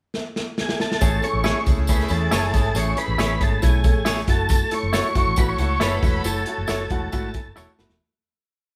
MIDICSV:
0, 0, Header, 1, 7, 480
1, 0, Start_track
1, 0, Key_signature, 3, "major"
1, 0, Tempo, 436681
1, 1115, Time_signature, 4, 2, 24, 8
1, 9619, End_track
2, 0, Start_track
2, 0, Title_t, "Tonewheel organ"
2, 0, Program_c, 0, 16
2, 663, Note_on_c, 0, 68, 72
2, 873, Note_off_c, 0, 68, 0
2, 893, Note_on_c, 0, 69, 80
2, 1361, Note_on_c, 0, 73, 97
2, 1378, Note_off_c, 0, 69, 0
2, 1803, Note_off_c, 0, 73, 0
2, 2084, Note_on_c, 0, 71, 78
2, 2323, Note_on_c, 0, 69, 72
2, 2325, Note_off_c, 0, 71, 0
2, 3042, Note_on_c, 0, 73, 99
2, 3058, Note_off_c, 0, 69, 0
2, 3274, Note_on_c, 0, 71, 108
2, 3284, Note_off_c, 0, 73, 0
2, 3764, Note_on_c, 0, 69, 79
2, 3766, Note_off_c, 0, 71, 0
2, 3999, Note_on_c, 0, 68, 77
2, 4004, Note_off_c, 0, 69, 0
2, 4464, Note_off_c, 0, 68, 0
2, 4477, Note_on_c, 0, 68, 89
2, 4584, Note_off_c, 0, 68, 0
2, 4721, Note_on_c, 0, 69, 95
2, 5208, Note_on_c, 0, 73, 112
2, 5210, Note_off_c, 0, 69, 0
2, 5921, Note_on_c, 0, 71, 84
2, 5941, Note_off_c, 0, 73, 0
2, 6031, Note_on_c, 0, 73, 93
2, 6039, Note_off_c, 0, 71, 0
2, 6397, Note_on_c, 0, 71, 88
2, 6402, Note_off_c, 0, 73, 0
2, 6889, Note_off_c, 0, 71, 0
2, 6902, Note_on_c, 0, 69, 80
2, 8286, Note_off_c, 0, 69, 0
2, 9619, End_track
3, 0, Start_track
3, 0, Title_t, "Clean electric guitar"
3, 0, Program_c, 1, 27
3, 1584, Note_on_c, 1, 64, 73
3, 1593, Note_on_c, 1, 68, 86
3, 1607, Note_on_c, 1, 73, 87
3, 1737, Note_off_c, 1, 64, 0
3, 1741, Note_off_c, 1, 68, 0
3, 1748, Note_off_c, 1, 73, 0
3, 2542, Note_on_c, 1, 64, 78
3, 2555, Note_on_c, 1, 68, 80
3, 2563, Note_on_c, 1, 73, 74
3, 2695, Note_off_c, 1, 64, 0
3, 2702, Note_off_c, 1, 68, 0
3, 2705, Note_off_c, 1, 73, 0
3, 3499, Note_on_c, 1, 64, 69
3, 3508, Note_on_c, 1, 68, 77
3, 3520, Note_on_c, 1, 73, 84
3, 3653, Note_off_c, 1, 64, 0
3, 3658, Note_off_c, 1, 68, 0
3, 3663, Note_off_c, 1, 73, 0
3, 4452, Note_on_c, 1, 64, 71
3, 4467, Note_on_c, 1, 68, 75
3, 4476, Note_on_c, 1, 73, 78
3, 4609, Note_off_c, 1, 64, 0
3, 4617, Note_off_c, 1, 68, 0
3, 4621, Note_off_c, 1, 73, 0
3, 5416, Note_on_c, 1, 64, 75
3, 5428, Note_on_c, 1, 69, 78
3, 5437, Note_on_c, 1, 73, 86
3, 5572, Note_off_c, 1, 64, 0
3, 5577, Note_off_c, 1, 69, 0
3, 5582, Note_off_c, 1, 73, 0
3, 6376, Note_on_c, 1, 64, 77
3, 6389, Note_on_c, 1, 69, 82
3, 6399, Note_on_c, 1, 73, 98
3, 6532, Note_off_c, 1, 64, 0
3, 6538, Note_off_c, 1, 69, 0
3, 6544, Note_off_c, 1, 73, 0
3, 7340, Note_on_c, 1, 64, 72
3, 7356, Note_on_c, 1, 69, 88
3, 7365, Note_on_c, 1, 73, 81
3, 7495, Note_off_c, 1, 64, 0
3, 7503, Note_off_c, 1, 69, 0
3, 7507, Note_off_c, 1, 73, 0
3, 8307, Note_on_c, 1, 64, 74
3, 8319, Note_on_c, 1, 69, 80
3, 8328, Note_on_c, 1, 73, 91
3, 8460, Note_off_c, 1, 64, 0
3, 8465, Note_off_c, 1, 69, 0
3, 8470, Note_off_c, 1, 73, 0
3, 9619, End_track
4, 0, Start_track
4, 0, Title_t, "Horn section"
4, 0, Program_c, 2, 61
4, 1103, Note_on_c, 2, 64, 76
4, 1107, Note_on_c, 2, 68, 82
4, 1108, Note_on_c, 2, 61, 77
4, 4420, Note_off_c, 2, 64, 0
4, 4423, Note_off_c, 2, 61, 0
4, 4423, Note_off_c, 2, 68, 0
4, 5652, Note_on_c, 2, 66, 78
4, 5657, Note_on_c, 2, 73, 93
4, 5659, Note_on_c, 2, 69, 81
4, 8261, Note_off_c, 2, 66, 0
4, 8264, Note_off_c, 2, 73, 0
4, 8265, Note_off_c, 2, 69, 0
4, 9619, End_track
5, 0, Start_track
5, 0, Title_t, "Upright piano"
5, 0, Program_c, 3, 0
5, 1110, Note_on_c, 3, 57, 99
5, 1110, Note_on_c, 3, 61, 92
5, 1114, Note_on_c, 3, 68, 112
5, 1281, Note_off_c, 3, 57, 0
5, 1281, Note_off_c, 3, 61, 0
5, 1283, Note_off_c, 3, 68, 0
5, 1353, Note_on_c, 3, 57, 68
5, 1355, Note_on_c, 3, 61, 63
5, 1359, Note_on_c, 3, 69, 69
5, 1522, Note_off_c, 3, 57, 0
5, 1523, Note_off_c, 3, 61, 0
5, 1525, Note_off_c, 3, 69, 0
5, 1598, Note_on_c, 3, 57, 58
5, 1600, Note_on_c, 3, 61, 60
5, 1602, Note_on_c, 3, 68, 68
5, 1764, Note_off_c, 3, 57, 0
5, 1765, Note_off_c, 3, 61, 0
5, 1766, Note_off_c, 3, 68, 0
5, 1837, Note_on_c, 3, 57, 70
5, 1840, Note_on_c, 3, 61, 60
5, 1840, Note_on_c, 3, 68, 71
5, 2004, Note_off_c, 3, 57, 0
5, 2005, Note_off_c, 3, 61, 0
5, 2005, Note_off_c, 3, 68, 0
5, 2076, Note_on_c, 3, 68, 97
5, 2077, Note_on_c, 3, 57, 90
5, 2078, Note_on_c, 3, 61, 76
5, 2243, Note_off_c, 3, 57, 0
5, 2243, Note_off_c, 3, 68, 0
5, 2244, Note_off_c, 3, 61, 0
5, 2308, Note_on_c, 3, 57, 67
5, 2311, Note_on_c, 3, 61, 61
5, 2317, Note_on_c, 3, 68, 77
5, 2479, Note_off_c, 3, 57, 0
5, 2480, Note_off_c, 3, 61, 0
5, 2483, Note_off_c, 3, 68, 0
5, 2545, Note_on_c, 3, 57, 68
5, 2548, Note_on_c, 3, 61, 62
5, 2548, Note_on_c, 3, 68, 74
5, 2717, Note_off_c, 3, 57, 0
5, 2718, Note_off_c, 3, 68, 0
5, 2719, Note_off_c, 3, 61, 0
5, 2787, Note_on_c, 3, 61, 60
5, 2788, Note_on_c, 3, 57, 57
5, 2795, Note_on_c, 3, 68, 69
5, 2958, Note_off_c, 3, 57, 0
5, 2958, Note_off_c, 3, 61, 0
5, 2962, Note_off_c, 3, 68, 0
5, 3027, Note_on_c, 3, 57, 84
5, 3029, Note_on_c, 3, 61, 80
5, 3031, Note_on_c, 3, 68, 96
5, 3198, Note_off_c, 3, 57, 0
5, 3199, Note_off_c, 3, 61, 0
5, 3200, Note_off_c, 3, 68, 0
5, 3260, Note_on_c, 3, 57, 63
5, 3260, Note_on_c, 3, 61, 66
5, 3262, Note_on_c, 3, 68, 82
5, 3434, Note_off_c, 3, 57, 0
5, 3434, Note_off_c, 3, 61, 0
5, 3435, Note_off_c, 3, 68, 0
5, 3499, Note_on_c, 3, 57, 60
5, 3499, Note_on_c, 3, 61, 61
5, 3501, Note_on_c, 3, 68, 71
5, 3673, Note_off_c, 3, 57, 0
5, 3674, Note_off_c, 3, 61, 0
5, 3674, Note_off_c, 3, 68, 0
5, 3737, Note_on_c, 3, 57, 62
5, 3742, Note_on_c, 3, 61, 61
5, 3744, Note_on_c, 3, 68, 74
5, 3912, Note_off_c, 3, 57, 0
5, 3915, Note_off_c, 3, 61, 0
5, 3916, Note_off_c, 3, 68, 0
5, 3979, Note_on_c, 3, 57, 86
5, 3983, Note_on_c, 3, 64, 98
5, 3985, Note_on_c, 3, 61, 76
5, 4153, Note_off_c, 3, 57, 0
5, 4156, Note_off_c, 3, 61, 0
5, 4156, Note_off_c, 3, 64, 0
5, 4219, Note_on_c, 3, 57, 65
5, 4222, Note_on_c, 3, 61, 62
5, 4226, Note_on_c, 3, 69, 76
5, 4393, Note_off_c, 3, 57, 0
5, 4395, Note_off_c, 3, 61, 0
5, 4397, Note_off_c, 3, 69, 0
5, 4458, Note_on_c, 3, 57, 73
5, 4463, Note_on_c, 3, 61, 60
5, 4464, Note_on_c, 3, 68, 75
5, 4633, Note_off_c, 3, 57, 0
5, 4635, Note_off_c, 3, 61, 0
5, 4636, Note_off_c, 3, 68, 0
5, 4705, Note_on_c, 3, 57, 66
5, 4705, Note_on_c, 3, 64, 56
5, 4709, Note_on_c, 3, 66, 70
5, 5092, Note_off_c, 3, 57, 0
5, 5092, Note_off_c, 3, 64, 0
5, 5094, Note_off_c, 3, 66, 0
5, 5182, Note_on_c, 3, 57, 66
5, 5183, Note_on_c, 3, 69, 79
5, 5184, Note_on_c, 3, 64, 66
5, 5355, Note_off_c, 3, 57, 0
5, 5355, Note_off_c, 3, 69, 0
5, 5356, Note_off_c, 3, 64, 0
5, 5418, Note_on_c, 3, 57, 68
5, 5421, Note_on_c, 3, 64, 60
5, 5425, Note_on_c, 3, 66, 73
5, 5593, Note_off_c, 3, 57, 0
5, 5595, Note_off_c, 3, 64, 0
5, 5597, Note_off_c, 3, 66, 0
5, 5661, Note_on_c, 3, 57, 68
5, 5666, Note_on_c, 3, 64, 63
5, 5667, Note_on_c, 3, 66, 76
5, 5835, Note_off_c, 3, 57, 0
5, 5837, Note_off_c, 3, 64, 0
5, 5837, Note_off_c, 3, 66, 0
5, 5905, Note_on_c, 3, 57, 84
5, 5907, Note_on_c, 3, 64, 75
5, 5910, Note_on_c, 3, 66, 103
5, 6077, Note_off_c, 3, 57, 0
5, 6078, Note_off_c, 3, 64, 0
5, 6079, Note_off_c, 3, 66, 0
5, 6147, Note_on_c, 3, 57, 67
5, 6150, Note_on_c, 3, 64, 67
5, 6150, Note_on_c, 3, 66, 76
5, 6318, Note_off_c, 3, 57, 0
5, 6319, Note_off_c, 3, 64, 0
5, 6319, Note_off_c, 3, 66, 0
5, 6388, Note_on_c, 3, 57, 67
5, 6389, Note_on_c, 3, 64, 59
5, 6393, Note_on_c, 3, 68, 72
5, 6559, Note_off_c, 3, 57, 0
5, 6559, Note_off_c, 3, 64, 0
5, 6561, Note_off_c, 3, 68, 0
5, 6624, Note_on_c, 3, 57, 62
5, 6625, Note_on_c, 3, 64, 57
5, 6631, Note_on_c, 3, 66, 67
5, 6797, Note_off_c, 3, 57, 0
5, 6797, Note_off_c, 3, 64, 0
5, 6800, Note_off_c, 3, 66, 0
5, 6868, Note_on_c, 3, 57, 79
5, 6872, Note_on_c, 3, 64, 83
5, 6874, Note_on_c, 3, 69, 100
5, 7039, Note_off_c, 3, 57, 0
5, 7041, Note_off_c, 3, 64, 0
5, 7042, Note_off_c, 3, 69, 0
5, 7111, Note_on_c, 3, 57, 64
5, 7111, Note_on_c, 3, 64, 58
5, 7117, Note_on_c, 3, 66, 75
5, 7280, Note_off_c, 3, 64, 0
5, 7281, Note_off_c, 3, 57, 0
5, 7283, Note_off_c, 3, 66, 0
5, 7350, Note_on_c, 3, 57, 61
5, 7352, Note_on_c, 3, 64, 57
5, 7355, Note_on_c, 3, 66, 71
5, 7521, Note_off_c, 3, 57, 0
5, 7521, Note_off_c, 3, 64, 0
5, 7523, Note_off_c, 3, 66, 0
5, 7596, Note_on_c, 3, 57, 80
5, 7598, Note_on_c, 3, 78, 69
5, 7600, Note_on_c, 3, 64, 81
5, 7600, Note_on_c, 3, 66, 92
5, 7764, Note_off_c, 3, 57, 0
5, 7766, Note_off_c, 3, 64, 0
5, 7766, Note_off_c, 3, 66, 0
5, 7820, Note_off_c, 3, 78, 0
5, 7831, Note_on_c, 3, 57, 109
5, 7834, Note_on_c, 3, 64, 91
5, 7834, Note_on_c, 3, 76, 69
5, 7836, Note_on_c, 3, 66, 117
5, 8002, Note_off_c, 3, 57, 0
5, 8003, Note_off_c, 3, 64, 0
5, 8004, Note_off_c, 3, 66, 0
5, 8058, Note_off_c, 3, 76, 0
5, 8074, Note_on_c, 3, 57, 79
5, 8077, Note_on_c, 3, 64, 75
5, 8077, Note_on_c, 3, 80, 63
5, 8080, Note_on_c, 3, 69, 82
5, 8243, Note_off_c, 3, 57, 0
5, 8245, Note_off_c, 3, 64, 0
5, 8246, Note_off_c, 3, 69, 0
5, 8300, Note_off_c, 3, 80, 0
5, 8316, Note_on_c, 3, 57, 81
5, 8318, Note_on_c, 3, 64, 76
5, 8318, Note_on_c, 3, 66, 85
5, 8318, Note_on_c, 3, 81, 68
5, 8484, Note_off_c, 3, 57, 0
5, 8485, Note_off_c, 3, 64, 0
5, 8486, Note_off_c, 3, 66, 0
5, 8540, Note_off_c, 3, 81, 0
5, 8560, Note_on_c, 3, 57, 73
5, 8560, Note_on_c, 3, 83, 54
5, 8562, Note_on_c, 3, 64, 72
5, 8566, Note_on_c, 3, 66, 80
5, 8727, Note_off_c, 3, 57, 0
5, 8728, Note_off_c, 3, 64, 0
5, 8730, Note_off_c, 3, 66, 0
5, 8782, Note_off_c, 3, 83, 0
5, 9619, End_track
6, 0, Start_track
6, 0, Title_t, "Fingered electric bass"
6, 0, Program_c, 4, 33
6, 1119, Note_on_c, 4, 33, 96
6, 1308, Note_off_c, 4, 33, 0
6, 1466, Note_on_c, 4, 33, 89
6, 1660, Note_off_c, 4, 33, 0
6, 1835, Note_on_c, 4, 37, 85
6, 1930, Note_off_c, 4, 37, 0
6, 1948, Note_on_c, 4, 37, 77
6, 2236, Note_off_c, 4, 37, 0
6, 2307, Note_on_c, 4, 40, 82
6, 2500, Note_off_c, 4, 40, 0
6, 2547, Note_on_c, 4, 30, 89
6, 2787, Note_off_c, 4, 30, 0
6, 2787, Note_on_c, 4, 32, 72
6, 2980, Note_off_c, 4, 32, 0
6, 3020, Note_on_c, 4, 33, 92
6, 3216, Note_off_c, 4, 33, 0
6, 3384, Note_on_c, 4, 33, 89
6, 3482, Note_off_c, 4, 33, 0
6, 3503, Note_on_c, 4, 33, 83
6, 3697, Note_off_c, 4, 33, 0
6, 3750, Note_on_c, 4, 32, 84
6, 3941, Note_off_c, 4, 32, 0
6, 3993, Note_on_c, 4, 35, 81
6, 4345, Note_off_c, 4, 35, 0
6, 4345, Note_on_c, 4, 33, 80
6, 4634, Note_off_c, 4, 33, 0
6, 4700, Note_on_c, 4, 30, 81
6, 5086, Note_off_c, 4, 30, 0
6, 5311, Note_on_c, 4, 30, 80
6, 5502, Note_off_c, 4, 30, 0
6, 5665, Note_on_c, 4, 30, 90
6, 5763, Note_off_c, 4, 30, 0
6, 5780, Note_on_c, 4, 33, 78
6, 5880, Note_off_c, 4, 33, 0
6, 5911, Note_on_c, 4, 33, 91
6, 6102, Note_off_c, 4, 33, 0
6, 6141, Note_on_c, 4, 37, 85
6, 6336, Note_off_c, 4, 37, 0
6, 6387, Note_on_c, 4, 30, 80
6, 6580, Note_off_c, 4, 30, 0
6, 6624, Note_on_c, 4, 28, 85
6, 6819, Note_off_c, 4, 28, 0
6, 6871, Note_on_c, 4, 30, 89
6, 7063, Note_off_c, 4, 30, 0
6, 7234, Note_on_c, 4, 30, 89
6, 7329, Note_off_c, 4, 30, 0
6, 7356, Note_on_c, 4, 30, 82
6, 7546, Note_off_c, 4, 30, 0
6, 7589, Note_on_c, 4, 28, 87
6, 7782, Note_off_c, 4, 28, 0
6, 7840, Note_on_c, 4, 32, 82
6, 8125, Note_off_c, 4, 32, 0
6, 8199, Note_on_c, 4, 30, 85
6, 8293, Note_off_c, 4, 30, 0
6, 8325, Note_on_c, 4, 28, 83
6, 8417, Note_off_c, 4, 28, 0
6, 8559, Note_on_c, 4, 30, 73
6, 8654, Note_off_c, 4, 30, 0
6, 8681, Note_on_c, 4, 28, 80
6, 8775, Note_off_c, 4, 28, 0
6, 9619, End_track
7, 0, Start_track
7, 0, Title_t, "Drums"
7, 153, Note_on_c, 9, 38, 53
7, 263, Note_off_c, 9, 38, 0
7, 398, Note_on_c, 9, 38, 62
7, 508, Note_off_c, 9, 38, 0
7, 635, Note_on_c, 9, 38, 74
7, 745, Note_off_c, 9, 38, 0
7, 759, Note_on_c, 9, 38, 76
7, 869, Note_off_c, 9, 38, 0
7, 880, Note_on_c, 9, 38, 83
7, 990, Note_off_c, 9, 38, 0
7, 1008, Note_on_c, 9, 38, 78
7, 1110, Note_on_c, 9, 54, 84
7, 1117, Note_off_c, 9, 38, 0
7, 1118, Note_on_c, 9, 36, 100
7, 1127, Note_on_c, 9, 42, 80
7, 1220, Note_off_c, 9, 54, 0
7, 1228, Note_off_c, 9, 36, 0
7, 1236, Note_off_c, 9, 42, 0
7, 1343, Note_on_c, 9, 54, 41
7, 1359, Note_on_c, 9, 42, 66
7, 1453, Note_off_c, 9, 54, 0
7, 1469, Note_off_c, 9, 42, 0
7, 1580, Note_on_c, 9, 54, 81
7, 1602, Note_on_c, 9, 38, 95
7, 1605, Note_on_c, 9, 42, 77
7, 1690, Note_off_c, 9, 54, 0
7, 1712, Note_off_c, 9, 38, 0
7, 1715, Note_off_c, 9, 42, 0
7, 1826, Note_on_c, 9, 54, 51
7, 1831, Note_on_c, 9, 42, 67
7, 1834, Note_on_c, 9, 36, 74
7, 1936, Note_off_c, 9, 54, 0
7, 1941, Note_off_c, 9, 42, 0
7, 1943, Note_off_c, 9, 36, 0
7, 2058, Note_on_c, 9, 54, 88
7, 2072, Note_on_c, 9, 42, 79
7, 2079, Note_on_c, 9, 36, 79
7, 2168, Note_off_c, 9, 54, 0
7, 2182, Note_off_c, 9, 42, 0
7, 2189, Note_off_c, 9, 36, 0
7, 2200, Note_on_c, 9, 38, 32
7, 2290, Note_on_c, 9, 54, 59
7, 2308, Note_on_c, 9, 42, 72
7, 2310, Note_off_c, 9, 38, 0
7, 2400, Note_off_c, 9, 54, 0
7, 2418, Note_off_c, 9, 42, 0
7, 2545, Note_on_c, 9, 54, 99
7, 2554, Note_on_c, 9, 38, 94
7, 2555, Note_on_c, 9, 42, 71
7, 2655, Note_off_c, 9, 54, 0
7, 2664, Note_off_c, 9, 38, 0
7, 2665, Note_off_c, 9, 42, 0
7, 2676, Note_on_c, 9, 38, 34
7, 2786, Note_off_c, 9, 38, 0
7, 2787, Note_on_c, 9, 54, 53
7, 2791, Note_on_c, 9, 36, 79
7, 2793, Note_on_c, 9, 42, 71
7, 2897, Note_off_c, 9, 54, 0
7, 2901, Note_off_c, 9, 36, 0
7, 2903, Note_off_c, 9, 42, 0
7, 3019, Note_on_c, 9, 54, 78
7, 3033, Note_on_c, 9, 42, 83
7, 3129, Note_off_c, 9, 54, 0
7, 3143, Note_off_c, 9, 42, 0
7, 3263, Note_on_c, 9, 42, 67
7, 3266, Note_on_c, 9, 54, 42
7, 3373, Note_off_c, 9, 42, 0
7, 3376, Note_off_c, 9, 54, 0
7, 3503, Note_on_c, 9, 54, 80
7, 3513, Note_on_c, 9, 38, 90
7, 3516, Note_on_c, 9, 42, 77
7, 3613, Note_off_c, 9, 54, 0
7, 3623, Note_off_c, 9, 38, 0
7, 3626, Note_off_c, 9, 42, 0
7, 3746, Note_on_c, 9, 36, 80
7, 3746, Note_on_c, 9, 54, 49
7, 3747, Note_on_c, 9, 42, 56
7, 3856, Note_off_c, 9, 36, 0
7, 3856, Note_off_c, 9, 54, 0
7, 3857, Note_off_c, 9, 42, 0
7, 3979, Note_on_c, 9, 54, 90
7, 3989, Note_on_c, 9, 42, 75
7, 3992, Note_on_c, 9, 36, 76
7, 4089, Note_off_c, 9, 54, 0
7, 4099, Note_off_c, 9, 42, 0
7, 4102, Note_off_c, 9, 36, 0
7, 4219, Note_on_c, 9, 54, 59
7, 4222, Note_on_c, 9, 42, 63
7, 4225, Note_on_c, 9, 36, 79
7, 4329, Note_off_c, 9, 54, 0
7, 4332, Note_off_c, 9, 42, 0
7, 4335, Note_off_c, 9, 36, 0
7, 4460, Note_on_c, 9, 38, 86
7, 4461, Note_on_c, 9, 42, 72
7, 4461, Note_on_c, 9, 54, 98
7, 4570, Note_off_c, 9, 38, 0
7, 4571, Note_off_c, 9, 42, 0
7, 4571, Note_off_c, 9, 54, 0
7, 4584, Note_on_c, 9, 38, 33
7, 4694, Note_off_c, 9, 38, 0
7, 4699, Note_on_c, 9, 42, 65
7, 4703, Note_on_c, 9, 36, 75
7, 4710, Note_on_c, 9, 54, 53
7, 4809, Note_off_c, 9, 42, 0
7, 4813, Note_off_c, 9, 36, 0
7, 4820, Note_off_c, 9, 54, 0
7, 4933, Note_on_c, 9, 54, 92
7, 4944, Note_on_c, 9, 42, 77
7, 4946, Note_on_c, 9, 36, 99
7, 5043, Note_off_c, 9, 54, 0
7, 5054, Note_off_c, 9, 42, 0
7, 5056, Note_off_c, 9, 36, 0
7, 5177, Note_on_c, 9, 54, 44
7, 5179, Note_on_c, 9, 42, 62
7, 5287, Note_off_c, 9, 54, 0
7, 5289, Note_off_c, 9, 42, 0
7, 5421, Note_on_c, 9, 54, 85
7, 5428, Note_on_c, 9, 38, 95
7, 5431, Note_on_c, 9, 42, 78
7, 5531, Note_off_c, 9, 54, 0
7, 5538, Note_off_c, 9, 38, 0
7, 5541, Note_off_c, 9, 42, 0
7, 5663, Note_on_c, 9, 54, 50
7, 5666, Note_on_c, 9, 36, 72
7, 5666, Note_on_c, 9, 42, 61
7, 5773, Note_off_c, 9, 54, 0
7, 5776, Note_off_c, 9, 36, 0
7, 5776, Note_off_c, 9, 42, 0
7, 5894, Note_on_c, 9, 54, 85
7, 5898, Note_on_c, 9, 42, 73
7, 5911, Note_on_c, 9, 36, 80
7, 6004, Note_off_c, 9, 54, 0
7, 6008, Note_off_c, 9, 42, 0
7, 6021, Note_off_c, 9, 36, 0
7, 6136, Note_on_c, 9, 42, 74
7, 6139, Note_on_c, 9, 54, 59
7, 6246, Note_off_c, 9, 42, 0
7, 6249, Note_off_c, 9, 54, 0
7, 6383, Note_on_c, 9, 38, 97
7, 6384, Note_on_c, 9, 42, 69
7, 6386, Note_on_c, 9, 54, 97
7, 6493, Note_off_c, 9, 38, 0
7, 6494, Note_off_c, 9, 42, 0
7, 6496, Note_off_c, 9, 54, 0
7, 6621, Note_on_c, 9, 46, 46
7, 6625, Note_on_c, 9, 36, 85
7, 6633, Note_on_c, 9, 54, 53
7, 6731, Note_off_c, 9, 46, 0
7, 6735, Note_off_c, 9, 36, 0
7, 6743, Note_off_c, 9, 54, 0
7, 6861, Note_on_c, 9, 54, 93
7, 6863, Note_on_c, 9, 42, 84
7, 6971, Note_off_c, 9, 54, 0
7, 6973, Note_off_c, 9, 42, 0
7, 7098, Note_on_c, 9, 42, 68
7, 7101, Note_on_c, 9, 54, 43
7, 7207, Note_off_c, 9, 42, 0
7, 7211, Note_off_c, 9, 54, 0
7, 7336, Note_on_c, 9, 54, 85
7, 7351, Note_on_c, 9, 38, 90
7, 7354, Note_on_c, 9, 42, 78
7, 7446, Note_off_c, 9, 54, 0
7, 7461, Note_off_c, 9, 38, 0
7, 7464, Note_off_c, 9, 42, 0
7, 7583, Note_on_c, 9, 42, 61
7, 7588, Note_on_c, 9, 54, 49
7, 7591, Note_on_c, 9, 36, 73
7, 7693, Note_off_c, 9, 42, 0
7, 7698, Note_off_c, 9, 54, 0
7, 7701, Note_off_c, 9, 36, 0
7, 7830, Note_on_c, 9, 42, 70
7, 7830, Note_on_c, 9, 54, 87
7, 7840, Note_on_c, 9, 36, 81
7, 7940, Note_off_c, 9, 42, 0
7, 7940, Note_off_c, 9, 54, 0
7, 7950, Note_off_c, 9, 36, 0
7, 8066, Note_on_c, 9, 54, 57
7, 8068, Note_on_c, 9, 42, 63
7, 8075, Note_on_c, 9, 36, 82
7, 8176, Note_off_c, 9, 54, 0
7, 8178, Note_off_c, 9, 42, 0
7, 8185, Note_off_c, 9, 36, 0
7, 8315, Note_on_c, 9, 54, 101
7, 8321, Note_on_c, 9, 38, 51
7, 8425, Note_off_c, 9, 54, 0
7, 8431, Note_off_c, 9, 38, 0
7, 8559, Note_on_c, 9, 38, 78
7, 8566, Note_on_c, 9, 54, 54
7, 8669, Note_off_c, 9, 38, 0
7, 8676, Note_off_c, 9, 54, 0
7, 8680, Note_on_c, 9, 38, 77
7, 8790, Note_off_c, 9, 38, 0
7, 9619, End_track
0, 0, End_of_file